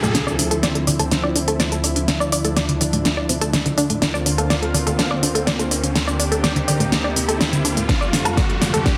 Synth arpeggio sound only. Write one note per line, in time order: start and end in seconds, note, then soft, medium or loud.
0.03 0.09 A3 medium
0.15 0.21 D4 loud
0.27 0.31 D5 loud
0.39 0.46 D4 medium
0.51 0.61 A4 loud
0.63 0.67 D5 loud
0.75 0.82 A4 medium
0.87 0.94 D5 medium
0.99 1.06 A4 loud
1.11 1.18 D4 loud
1.23 1.28 D5 loud
1.35 1.42 D4 medium
1.48 1.58 A4 loud
1.60 1.64 D5 loud
1.72 1.79 A4 medium
1.84 1.91 D5 medium
1.96 2.03 D4 medium
2.08 2.12 D4 medium
2.20 2.24 D5 loud
2.32 2.39 D5 loud
2.45 2.55 A4 loud
2.57 2.61 D5 loud
2.69 2.79 D3 medium
2.81 2.88 D5 medium
2.93 3.00 A3 medium
3.05 3.09 D4 medium
3.17 3.21 D5 loud
3.29 3.36 C4 medium
3.41 3.51 A4 loud
3.53 3.60 D4 medium
3.66 3.76 D3 medium
3.78 3.82 D4 loud
3.90 3.97 A3 medium
4.02 4.09 D4 loud
4.14 4.18 D5 loud
4.26 4.33 D4 medium
4.38 4.48 A4 loud
4.50 4.54 D5 loud
4.62 4.69 A4 medium
4.74 4.81 D5 medium
4.87 4.93 A4 loud
4.99 5.05 D4 loud
5.11 5.15 D5 loud
5.23 5.30 D4 medium
5.35 5.45 A4 loud
5.47 5.51 D5 loud
5.59 5.66 A4 medium
5.71 5.78 D5 medium
5.83 5.90 D4 medium
5.95 5.99 D4 medium
6.07 6.12 D5 loud
6.20 6.26 D5 loud
6.32 6.42 A4 loud
6.44 6.48 D5 loud
6.56 6.66 D3 medium
6.68 6.75 D5 medium
6.80 6.87 A3 medium
6.92 6.96 D4 medium
7.04 7.08 D5 loud
7.16 7.23 C4 medium
7.29 7.39 A4 loud
7.40 7.47 D4 medium
7.53 7.63 D3 medium
7.65 7.69 D4 loud
7.77 7.83 A3 medium
7.89 7.96 D4 loud
8.01 8.05 D5 loud
8.13 8.20 D4 medium
8.25 8.35 A4 loud
8.37 8.41 D5 loud
8.49 8.56 A4 medium
8.61 8.68 D5 medium
8.74 8.80 A4 loud
8.86 8.92 D4 loud